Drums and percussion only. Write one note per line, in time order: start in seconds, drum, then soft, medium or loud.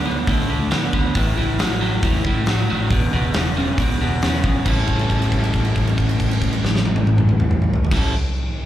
0.27 kick loud
0.27 open hi-hat medium
0.71 snare loud
0.71 open hi-hat medium
0.93 kick medium
1.15 kick loud
1.15 open hi-hat medium
1.59 snare loud
1.59 open hi-hat medium
2.03 kick loud
2.03 open hi-hat medium
2.25 kick medium
2.46 snare loud
2.46 open hi-hat medium
2.90 kick loud
2.90 open hi-hat medium
3.34 snare loud
3.34 open hi-hat medium
3.78 kick loud
3.78 open hi-hat medium
4.22 snare loud
4.22 open hi-hat medium
4.44 kick medium
4.66 kick loud
4.66 crash medium
4.88 kick medium
4.88 crash soft
4.99 crash soft
5.10 kick medium
5.10 crash soft
5.22 crash medium
5.32 kick medium
5.32 crash soft
5.44 crash soft
5.54 kick medium
5.54 crash soft
5.65 crash soft
5.76 kick medium
5.76 crash soft
5.87 crash soft
5.98 kick medium
5.98 crash soft
6.09 crash soft
6.20 kick medium
6.20 crash medium
6.31 crash medium
6.42 kick medium
6.42 crash soft
6.53 crash soft
6.65 snare medium
6.75 snare medium
6.85 high tom medium
6.96 high tom loud
7.07 high tom medium
7.18 mid tom loud
7.29 mid tom loud
7.40 mid tom loud
7.51 mid tom loud
7.62 mid tom medium
7.73 floor tom loud
7.85 floor tom loud
7.91 kick loud
7.91 snare loud
7.91 crash loud